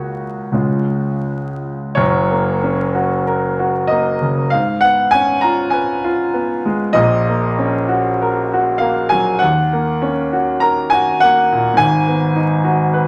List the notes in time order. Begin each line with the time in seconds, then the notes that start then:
Already playing: C#2 A#3 F#4 C#5
0.52 C#2 G#3 C#4 F4
1.95 F#1 F#2 C#5
2.31 A#3
2.63 C#4
2.94 F#4
3.27 A#4
3.59 F#4
3.87 A#3 D#5
4.21 C#3
4.50 G#2 F5
4.81 B3 F#5
5.11 C#4 G#5
5.41 F4 A#5
5.70 B4 G#5
6.04 F4
6.33 B3
6.65 G#3
6.93 A#1 A#2 D#5
7.29 A#3
7.59 C#4
7.89 F#4
8.22 A#4
8.53 F#4
8.78 A#3 F5
9.09 F#3 G#5
9.39 D#2 F#5
9.73 A#3
10.02 C#4
10.33 F#4
10.60 A#4 A#5
10.90 F#4 G#5
11.20 A#3 F#5
11.52 A#2
11.74 G#2 G#5
11.79 G#1
12.07 B3
12.35 D#4
12.64 F#4
12.94 B4